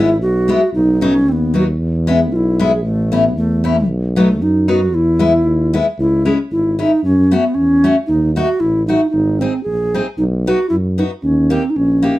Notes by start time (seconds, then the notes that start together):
Already playing: G#1 E4
0.22 B1 F#4
0.48 G#3 B3 E4
0.74 B1 D#4
1.01 F#3 B3 C#4 D#4
1.27 D#2 C4
1.32 B3
1.54 F#3 B3 D#4
1.58 F#4
1.79 E2
2.07 G#3 B3 C4 E4
2.13 B3
2.32 B1 F4
2.36 E4
2.59 G#3 B3 E4 G#4
2.83 A1 A3
3.12 A3 B3 C#4 E4
3.36 E2 A3
3.64 A3 B3 C#4 E4
3.88 B1
4.16 F#3 A3 B3 D#4
4.40 F#2 D#4
4.68 F#3 B3 D#4 F#4
4.93 E2 E4
5.19 G#3 B3 E4
5.45 D#2
5.73 G#3 B3 E4
5.99 C#2 E4
6.25 G#3 C#4 E4 G#4
6.51 G#1 E4
6.79 G#3 C#4 D#4 E4
7.03 F#2 C#4
7.31 A3 B3 C#4 F#4
7.54 E2 C#4
7.84 A3 C#4 F#4
8.07 D#2 D#4
8.35 A3 D#4 F#4
8.60 A1 E4
8.87 A3 D#4 F#4
9.10 G#1 D#4
9.39 C4 D#4 G#4
9.63 A#1 G#4
9.94 C4 D#4 G#4
10.17 B1 D#4
10.46 B3 D#4 F#4
10.69 F#2 E4
10.98 B3 D#4 F#4
11.22 D#2 C#4
11.50 A#3 C4 D#4 G4
11.70 D#4
11.76 A#1 C#4
12.02 A#3 D#4 G4